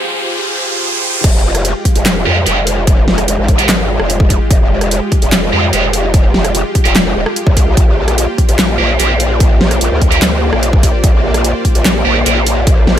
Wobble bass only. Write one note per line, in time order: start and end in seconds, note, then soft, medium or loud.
1.24 1.33 F1 medium
1.34 1.74 F1 loud
1.96 2.25 F1 loud
2.26 2.45 F2 loud
2.47 3.06 F1 loud
3.08 3.27 F1 medium
3.28 3.37 F1 loud
3.38 3.98 G#1 loud
4.00 4.39 F1 loud
4.51 4.59 F1 loud
4.61 5.00 F1 loud
5.22 5.51 F1 loud
5.53 5.71 F2 loud
5.73 6.33 F1 loud
6.34 6.53 F1 loud
6.55 6.63 F1 loud
6.85 7.04 D#1 loud
7.06 7.14 F1 loud
7.16 7.25 D#1 loud
7.47 7.76 C2 loud
7.77 7.86 A#1 loud
7.87 8.27 A#1 loud
8.49 8.78 A#1 loud
8.79 8.98 A#1 loud
9.00 9.59 A#1 loud
9.61 9.80 A#1 loud
9.81 9.90 A#1 loud
9.91 10.51 D2 loud
10.53 10.92 A#1 loud
11.04 11.12 A#1 medium
11.14 11.53 A#1 loud
11.75 12.04 A#1 loud
12.06 12.24 A#1 loud
12.26 12.86 A#1 loud
12.87 12.99 A#1 loud